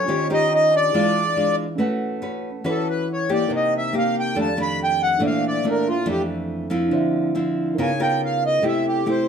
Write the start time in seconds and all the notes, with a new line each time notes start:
Already playing: C#4 B4 C#5 A5
0.05 D#3 C#4 F4 G4 C5
0.10 D#5
0.30 C#4 D#4 G4 C5 D#5
0.51 D#4 D#5
0.72 D4
0.76 D5
0.90 E4 G#4 D5
0.94 E3 G#3 D4 F4 F5
1.36 G#3 D4 F4
1.75 A3 C#4 F#4 A4
1.80 B4 F#5
2.22 C#4 F#4 B4
2.64 E3 C#4 F#4 B4
2.69 A4
2.89 B4
3.13 C#5
3.29 A#3 D#4 G4 D5
3.47 C3 D#4 A#4
3.51 C5 G5
3.56 D#5
3.77 E5
3.93 A#3 D#4 G4
3.98 F5
4.19 G5
4.34 F2 D#3 A3 D4 G4 A4 D5
4.38 F5 A5
4.57 D#3 A3 D4
4.61 B5
4.84 G5
5.03 F#5
5.18 A#2 E3 A3 A#3 D4 A4
5.22 C5 E5
5.27 F5
5.48 D5
5.64 E3 A3 D4
5.70 A#4
5.88 F4
6.06 F2 E3 A3 D4
6.10 G4
6.70 F3 C4 E4
6.89 D3 D4
6.93 C5 E5
7.35 F3 C4 E4
7.74 D#4 A#4
7.78 C#3 B3 F4 A#4 C#5 F5
7.82 G#5
8.00 B3 F4 A#4 G5
8.25 F5
8.46 D#5
8.60 C3 A3 E4 G4 A4
8.64 C5 E5 G5
8.88 G4
9.06 A3 E4 G4
9.10 C5